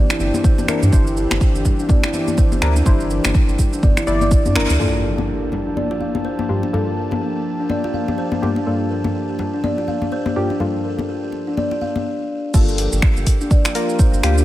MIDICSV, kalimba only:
0, 0, Header, 1, 2, 480
1, 0, Start_track
1, 0, Tempo, 483871
1, 919, Time_signature, 4, 2, 24, 8
1, 14330, End_track
2, 0, Start_track
2, 0, Title_t, "Kalimba"
2, 0, Program_c, 0, 108
2, 103, Note_on_c, 0, 64, 100
2, 190, Note_off_c, 0, 64, 0
2, 203, Note_on_c, 0, 76, 76
2, 328, Note_off_c, 0, 76, 0
2, 443, Note_on_c, 0, 72, 107
2, 568, Note_off_c, 0, 72, 0
2, 583, Note_on_c, 0, 67, 77
2, 675, Note_off_c, 0, 67, 0
2, 823, Note_on_c, 0, 62, 95
2, 910, Note_off_c, 0, 62, 0
2, 921, Note_on_c, 0, 67, 79
2, 996, Note_off_c, 0, 67, 0
2, 1160, Note_on_c, 0, 70, 78
2, 1294, Note_off_c, 0, 70, 0
2, 1401, Note_on_c, 0, 67, 83
2, 1527, Note_off_c, 0, 67, 0
2, 1541, Note_on_c, 0, 67, 82
2, 1634, Note_off_c, 0, 67, 0
2, 1781, Note_on_c, 0, 62, 101
2, 1869, Note_off_c, 0, 62, 0
2, 1879, Note_on_c, 0, 74, 80
2, 2006, Note_off_c, 0, 74, 0
2, 2021, Note_on_c, 0, 64, 101
2, 2109, Note_off_c, 0, 64, 0
2, 2119, Note_on_c, 0, 76, 73
2, 2246, Note_off_c, 0, 76, 0
2, 2360, Note_on_c, 0, 72, 102
2, 2487, Note_off_c, 0, 72, 0
2, 2502, Note_on_c, 0, 67, 78
2, 2594, Note_off_c, 0, 67, 0
2, 2741, Note_on_c, 0, 62, 96
2, 2829, Note_off_c, 0, 62, 0
2, 2839, Note_on_c, 0, 67, 81
2, 2915, Note_off_c, 0, 67, 0
2, 3080, Note_on_c, 0, 70, 75
2, 3214, Note_off_c, 0, 70, 0
2, 3319, Note_on_c, 0, 67, 79
2, 3446, Note_off_c, 0, 67, 0
2, 3460, Note_on_c, 0, 67, 81
2, 3553, Note_off_c, 0, 67, 0
2, 3699, Note_on_c, 0, 62, 99
2, 3788, Note_off_c, 0, 62, 0
2, 3799, Note_on_c, 0, 74, 83
2, 3926, Note_off_c, 0, 74, 0
2, 3940, Note_on_c, 0, 64, 102
2, 4029, Note_off_c, 0, 64, 0
2, 4040, Note_on_c, 0, 76, 77
2, 4115, Note_off_c, 0, 76, 0
2, 4181, Note_on_c, 0, 74, 94
2, 4269, Note_off_c, 0, 74, 0
2, 4280, Note_on_c, 0, 74, 84
2, 4407, Note_off_c, 0, 74, 0
2, 4421, Note_on_c, 0, 62, 99
2, 4509, Note_off_c, 0, 62, 0
2, 4520, Note_on_c, 0, 70, 107
2, 4654, Note_off_c, 0, 70, 0
2, 4760, Note_on_c, 0, 67, 70
2, 4836, Note_off_c, 0, 67, 0
2, 5000, Note_on_c, 0, 70, 67
2, 5134, Note_off_c, 0, 70, 0
2, 5241, Note_on_c, 0, 67, 73
2, 5367, Note_off_c, 0, 67, 0
2, 5380, Note_on_c, 0, 67, 72
2, 5474, Note_off_c, 0, 67, 0
2, 5620, Note_on_c, 0, 62, 87
2, 5709, Note_off_c, 0, 62, 0
2, 5719, Note_on_c, 0, 74, 75
2, 5846, Note_off_c, 0, 74, 0
2, 5860, Note_on_c, 0, 65, 94
2, 5949, Note_off_c, 0, 65, 0
2, 5958, Note_on_c, 0, 77, 67
2, 6086, Note_off_c, 0, 77, 0
2, 6198, Note_on_c, 0, 72, 90
2, 6326, Note_off_c, 0, 72, 0
2, 6340, Note_on_c, 0, 67, 65
2, 6434, Note_off_c, 0, 67, 0
2, 6578, Note_on_c, 0, 62, 88
2, 6668, Note_off_c, 0, 62, 0
2, 6678, Note_on_c, 0, 67, 73
2, 6755, Note_off_c, 0, 67, 0
2, 6918, Note_on_c, 0, 70, 68
2, 7053, Note_off_c, 0, 70, 0
2, 7158, Note_on_c, 0, 67, 76
2, 7286, Note_off_c, 0, 67, 0
2, 7297, Note_on_c, 0, 67, 74
2, 7392, Note_off_c, 0, 67, 0
2, 7539, Note_on_c, 0, 62, 90
2, 7628, Note_off_c, 0, 62, 0
2, 7637, Note_on_c, 0, 74, 74
2, 7765, Note_off_c, 0, 74, 0
2, 7779, Note_on_c, 0, 65, 91
2, 7868, Note_off_c, 0, 65, 0
2, 7878, Note_on_c, 0, 77, 70
2, 8006, Note_off_c, 0, 77, 0
2, 8118, Note_on_c, 0, 72, 95
2, 8246, Note_off_c, 0, 72, 0
2, 8259, Note_on_c, 0, 67, 69
2, 8353, Note_off_c, 0, 67, 0
2, 8500, Note_on_c, 0, 62, 95
2, 8589, Note_off_c, 0, 62, 0
2, 8598, Note_on_c, 0, 67, 74
2, 8675, Note_off_c, 0, 67, 0
2, 8838, Note_on_c, 0, 70, 70
2, 8973, Note_off_c, 0, 70, 0
2, 9079, Note_on_c, 0, 67, 76
2, 9206, Note_off_c, 0, 67, 0
2, 9221, Note_on_c, 0, 67, 75
2, 9314, Note_off_c, 0, 67, 0
2, 9460, Note_on_c, 0, 62, 93
2, 9549, Note_off_c, 0, 62, 0
2, 9560, Note_on_c, 0, 74, 80
2, 9687, Note_off_c, 0, 74, 0
2, 9702, Note_on_c, 0, 65, 88
2, 9790, Note_off_c, 0, 65, 0
2, 9801, Note_on_c, 0, 77, 72
2, 9927, Note_off_c, 0, 77, 0
2, 10041, Note_on_c, 0, 72, 100
2, 10167, Note_off_c, 0, 72, 0
2, 10183, Note_on_c, 0, 67, 66
2, 10275, Note_off_c, 0, 67, 0
2, 10422, Note_on_c, 0, 62, 90
2, 10510, Note_off_c, 0, 62, 0
2, 10519, Note_on_c, 0, 67, 73
2, 10595, Note_off_c, 0, 67, 0
2, 10759, Note_on_c, 0, 70, 72
2, 10893, Note_off_c, 0, 70, 0
2, 11000, Note_on_c, 0, 67, 79
2, 11126, Note_off_c, 0, 67, 0
2, 11142, Note_on_c, 0, 67, 76
2, 11235, Note_off_c, 0, 67, 0
2, 11382, Note_on_c, 0, 62, 97
2, 11470, Note_off_c, 0, 62, 0
2, 11480, Note_on_c, 0, 74, 79
2, 11606, Note_off_c, 0, 74, 0
2, 11622, Note_on_c, 0, 65, 92
2, 11710, Note_off_c, 0, 65, 0
2, 11720, Note_on_c, 0, 77, 73
2, 11846, Note_off_c, 0, 77, 0
2, 12441, Note_on_c, 0, 67, 82
2, 12516, Note_off_c, 0, 67, 0
2, 12681, Note_on_c, 0, 70, 76
2, 12814, Note_off_c, 0, 70, 0
2, 13061, Note_on_c, 0, 67, 80
2, 13154, Note_off_c, 0, 67, 0
2, 13302, Note_on_c, 0, 62, 103
2, 13390, Note_off_c, 0, 62, 0
2, 13401, Note_on_c, 0, 74, 82
2, 13527, Note_off_c, 0, 74, 0
2, 13542, Note_on_c, 0, 65, 101
2, 13630, Note_off_c, 0, 65, 0
2, 13640, Note_on_c, 0, 77, 75
2, 13767, Note_off_c, 0, 77, 0
2, 13880, Note_on_c, 0, 72, 102
2, 14007, Note_off_c, 0, 72, 0
2, 14021, Note_on_c, 0, 67, 78
2, 14114, Note_off_c, 0, 67, 0
2, 14263, Note_on_c, 0, 62, 106
2, 14330, Note_off_c, 0, 62, 0
2, 14330, End_track
0, 0, End_of_file